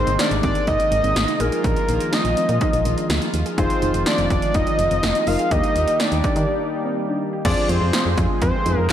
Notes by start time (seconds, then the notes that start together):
Already playing: C3 D#3 G#3 A#3 C4 D#4 G#4 A#4 C5
0.07 G#1, closed hi-hat
0.19 D4 D5, snare, closed hi-hat
0.31 G#1, closed hi-hat
0.43 G#1 C4 D5, kick, closed hi-hat
0.55 closed hi-hat
0.67 G#1 D#4 D#5, kick, closed hi-hat
0.80 closed hi-hat
0.92 G#1, closed hi-hat
1.04 G#1 C4, closed hi-hat
1.16 G#1, snare, closed hi-hat
1.28 D#4, closed hi-hat
1.40 A#1 D#3 F3 D#4 F4 G#4 A#4, closed hi-hat
1.52 G#4, closed hi-hat
1.64 A#1 D4 A#4, kick, closed hi-hat
1.76 closed hi-hat
1.88 A#1 D#4, closed hi-hat
2.00 closed hi-hat
2.13 D4 D#5, snare, closed hi-hat
2.25 A#1, closed hi-hat
2.37 C4, closed hi-hat
2.49 A#2, closed hi-hat
2.61 D#4, kick, closed hi-hat
2.73 A#1, closed hi-hat
2.85 A#1, closed hi-hat
2.98 D4, closed hi-hat
3.10 D2, snare, closed hi-hat
3.22 D#4, closed hi-hat
3.34 D#2, closed hi-hat
3.46 G#4, closed hi-hat
3.58 F1 F3 C4 D#4 F4 G#4 C5, kick, closed hi-hat
3.70 closed hi-hat
3.82 F1 D#4, closed hi-hat
3.94 F1, closed hi-hat
4.06 D4 D5, snare, closed hi-hat
4.18 F1, closed hi-hat
4.30 F1 C4 D5, kick, closed hi-hat
4.42 closed hi-hat
4.54 F1 D#4 D#5, kick, closed hi-hat
4.67 closed hi-hat
4.79 F1, closed hi-hat
4.91 F1 C4, closed hi-hat
5.03 F1, snare, closed hi-hat
5.15 D#4, closed hi-hat
5.27 F1 D#4 F4 A#4 F5, open hi-hat
5.39 G#4, closed hi-hat
5.51 D#2 G3 A#3 D4 D#4 G4 D#5, kick, closed hi-hat
5.64 closed hi-hat
5.76 D#2 F4, closed hi-hat
5.88 closed hi-hat
6.00 D#4 D5, snare, closed hi-hat
6.12 D#2, closed hi-hat
6.24 D4, kick, closed hi-hat
6.36 D#3, closed hi-hat
6.48 D#4
6.60 D#4
6.85 C4
7.09 D4
7.33 G4
7.45 F2 C3 F3 G#3 C4 F4 G#4 D5, kick, closed hi-hat, crash
7.57 D4
7.69 F2 C4 C5, closed hi-hat
7.81 F2
7.93 C4, snare, closed hi-hat
8.06 F2
8.17 F2 D4, kick, closed hi-hat
8.42 F2 C4 C5, kick, closed hi-hat
8.66 F2 D#4, closed hi-hat
8.78 F2 D#4